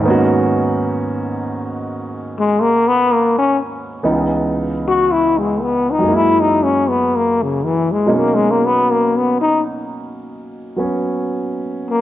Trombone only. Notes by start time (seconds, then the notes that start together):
2.39 G#3
2.61 A#3
2.88 B3
3.13 A#3
3.38 C#4
4.88 F#4
5.12 E4
5.38 G#3
5.61 B3
5.91 D#4
6.15 E4
6.40 D#4
6.63 C#4
6.89 B3
7.16 A#3
7.43 C#3
7.64 E3
7.92 G#3
8.16 A#3
8.35 G#3
8.51 A#3
8.66 B3
8.92 A#3
9.17 B3
9.41 D#4
11.90 A#3